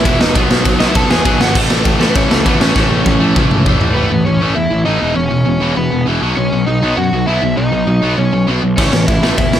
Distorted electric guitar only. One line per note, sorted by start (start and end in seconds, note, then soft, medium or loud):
0.04 0.34 E2 medium
0.04 0.33 B2 medium
0.04 0.35 E3 medium
0.34 0.79 B2 loud
0.34 0.79 F#3 loud
0.34 0.78 B3 loud
0.79 1.23 B2 medium
0.79 1.25 F#3 medium
0.79 1.24 B3 medium
1.24 1.54 B2 medium
1.24 1.55 F#3 medium
1.24 1.55 B3 medium
1.54 2.01 A2 loud
1.54 2.00 E3 medium
1.54 1.99 A3 loud
1.99 2.44 A2 medium
1.99 2.45 E3 medium
1.99 2.47 A3 medium
2.44 2.74 A2 medium
2.44 2.76 E3 medium
2.44 2.77 A3 medium
2.75 3.19 A2 loud
2.75 3.20 E3 loud
2.75 3.19 A3 loud
3.20 3.65 A2 medium
3.20 3.65 E3 medium
3.20 3.65 A3 medium
3.66 3.94 A2 medium
3.66 3.95 E3 medium
3.66 3.96 A3 loud
3.96 4.09 A2 medium
3.96 4.10 E3 loud
3.96 4.11 A3 loud
4.11 4.24 A2 medium
4.11 4.25 E3 medium
4.26 4.40 A2 medium
4.26 4.40 E3 medium
4.41 4.54 A2 medium
4.41 4.55 E3 medium
4.41 4.56 A3 loud
4.55 4.69 A2 medium
4.55 4.70 E3 medium
4.70 4.84 A2 medium
4.70 4.85 E3 medium
4.85 5.00 A2 loud
4.85 5.00 E3 medium
4.85 5.01 A3 loud
5.00 5.14 E2 medium
5.00 5.15 B2 loud
5.00 5.16 E3 medium
5.15 5.29 E2 medium
5.15 5.30 B2 medium
5.31 5.44 E2 medium
5.31 5.45 B2 medium
5.46 5.60 E2 medium
5.46 5.60 B2 medium
5.61 5.75 E2 loud
5.61 5.75 B2 loud
5.61 5.76 E3 loud
5.76 5.90 E2 medium
5.76 5.90 B2 medium
5.91 6.05 E2 medium
5.91 6.05 B2 medium
6.06 6.21 E2 medium
6.06 6.21 B2 loud
6.06 6.21 E3 loud
6.22 6.36 B2 medium
6.22 6.36 F#3 medium
6.22 6.37 B3 medium
6.37 6.51 B2 medium
6.37 6.51 F#3 medium
6.53 6.66 B2 medium
6.53 6.66 F#3 medium
6.67 6.81 B2 medium
6.67 6.81 F#3 medium
6.82 6.96 B2 medium
6.82 6.97 F#3 loud
6.82 6.97 B3 loud
6.97 7.11 B2 medium
6.97 7.11 F#3 medium
7.13 7.26 B2 medium
7.13 7.26 F#3 medium
7.27 7.41 B2 medium
7.27 7.42 F#3 loud
7.27 7.42 B3 loud
7.42 7.56 B2 medium
7.42 7.56 F#3 medium
7.57 7.71 B2 medium
7.57 7.71 F#3 medium
7.72 7.86 B2 medium
7.72 7.86 F#3 medium
7.87 8.01 B2 medium
7.87 8.01 F#3 medium
8.02 8.17 B2 medium
8.02 8.17 F#3 loud
8.02 8.17 B3 loud
8.18 8.31 B2 medium
8.18 8.32 F#3 medium
8.33 8.46 B2 medium
8.33 8.46 F#3 medium
8.47 8.61 B2 medium
8.47 8.62 F#3 loud
8.47 8.62 B3 medium
8.63 8.76 B2 medium
8.63 8.77 F#3 medium
8.78 8.92 A2 medium
8.78 8.92 E3 medium
8.78 8.92 A3 medium
8.93 9.07 A2 medium
8.93 9.07 E3 medium
9.08 9.22 A2 medium
9.08 9.22 E3 medium
9.23 9.37 A2 medium
9.23 9.37 E3 loud
9.23 9.38 A3 loud
9.38 9.52 A2 medium
9.38 9.52 E3 medium
9.53 9.60 A2 medium
9.53 9.60 E3 medium